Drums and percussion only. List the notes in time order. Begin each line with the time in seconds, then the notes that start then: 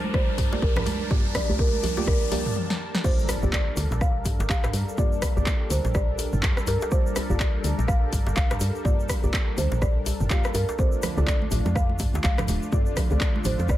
0.04 high conga
0.14 kick, cross-stick, djembe tone
0.29 muted conga
0.38 kick, mid tom, open hi-hat, djembe tone
0.52 djembe slap, high conga
0.62 kick, muted conga, high conga, djembe tone, djembe bass
0.76 cross-stick, mid tom, djembe slap, low conga
0.86 open hi-hat, djembe tone, high conga
1.10 kick, mid tom, muted conga, djembe tone
1.35 kick, cross-stick, open hi-hat, djembe tone, low conga
1.49 muted conga, high conga, djembe bass
1.59 kick, djembe tone
1.73 high conga
1.83 open hi-hat, muted conga, djembe tone, low conga
1.97 djembe slap, high conga
2.07 kick, cross-stick, djembe tone, djembe bass, low conga
2.21 muted conga
2.31 open hi-hat, djembe tone, low conga
2.46 mid tom
2.56 high tom
2.70 snare
2.95 snare
3.04 kick, crash, djembe tone, shaker
3.19 shaker
3.28 cross-stick, open hi-hat, djembe tone, shaker
3.42 djembe bass, shaker
3.53 kick, clap, djembe tone, shaker
3.77 open hi-hat, djembe tone, shaker
3.91 djembe slap, shaker
4.01 kick, cross-stick, djembe tone, shaker
4.25 kick, mid tom, open hi-hat, djembe tone, shaker
4.40 djembe slap, shaker
4.50 kick, clap, djembe tone, djembe bass, shaker
4.64 cross-stick, mid tom, djembe slap, shaker
4.73 open hi-hat, djembe tone, shaker
4.89 shaker
4.98 kick, mid tom, djembe tone, shaker
5.12 shaker
5.22 kick, cross-stick, open hi-hat, djembe tone, shaker
5.37 djembe bass, shaker
5.46 kick, clap, djembe tone, shaker
5.70 open hi-hat, djembe tone, shaker
5.85 djembe slap, shaker
5.94 kick, cross-stick, djembe tone, djembe bass, shaker
6.19 open hi-hat, djembe tone, shaker
6.33 mid tom, shaker
6.43 kick, clap, djembe tone, shaker
6.57 cross-stick, shaker
6.67 open hi-hat, djembe slap, djembe tone, shaker
6.81 djembe slap, shaker
6.92 kick, djembe tone, shaker
7.06 shaker
7.16 cross-stick, open hi-hat, djembe tone, shaker
7.30 djembe bass, shaker
7.40 kick, clap, djembe tone, shaker
7.64 open hi-hat, djembe tone, shaker
7.79 djembe slap, shaker
7.88 kick, cross-stick, djembe tone, shaker
8.13 kick, mid tom, open hi-hat, djembe tone, shaker
8.27 djembe slap, shaker
8.36 kick, clap, djembe tone, djembe bass, shaker
8.51 cross-stick, mid tom, djembe slap, shaker
8.60 open hi-hat, djembe tone, shaker
8.75 shaker
8.85 kick, mid tom, djembe tone, shaker
9.00 shaker
9.09 kick, cross-stick, open hi-hat, djembe tone, shaker
9.23 djembe bass, shaker
9.33 kick, clap, djembe tone, shaker
9.58 open hi-hat, djembe tone, shaker
9.72 djembe slap, shaker
9.82 kick, cross-stick, djembe tone, djembe bass, shaker
10.06 open hi-hat, djembe tone, shaker
10.20 mid tom, shaker
10.30 kick, clap, djembe tone, shaker
10.44 cross-stick, shaker
10.54 open hi-hat, djembe slap, djembe tone, shaker
10.69 djembe slap, shaker
10.78 kick, muted conga, djembe tone, shaker
10.92 shaker
11.03 cross-stick, open hi-hat, muted conga, djembe tone, low conga, shaker
11.17 high conga, djembe bass, shaker
11.27 kick, clap, djembe tone, shaker
11.42 muted conga, high conga
11.51 open hi-hat, djembe tone, low conga, shaker
11.66 muted conga, djembe slap, high conga, shaker
11.76 kick, cross-stick, djembe tone, shaker
11.89 muted conga
11.99 kick, mid tom, open hi-hat, djembe tone, shaker
12.13 djembe slap, high conga, shaker
12.24 kick, clap, muted conga, high conga, djembe tone, djembe bass, shaker
12.38 cross-stick, mid tom, djembe slap, low conga, shaker
12.48 open hi-hat, muted conga, high conga, djembe tone, shaker
12.62 shaker
12.72 kick, mid tom, muted conga, djembe tone, shaker
12.86 shaker
12.97 kick, cross-stick, open hi-hat, muted conga, djembe tone, low conga, shaker
13.10 high conga, djembe bass, shaker
13.21 kick, clap, djembe tone, shaker
13.36 muted conga, high conga
13.44 open hi-hat, djembe tone, low conga, shaker
13.59 muted conga, djembe slap, high conga, shaker
13.69 kick, cross-stick, djembe tone, djembe bass, shaker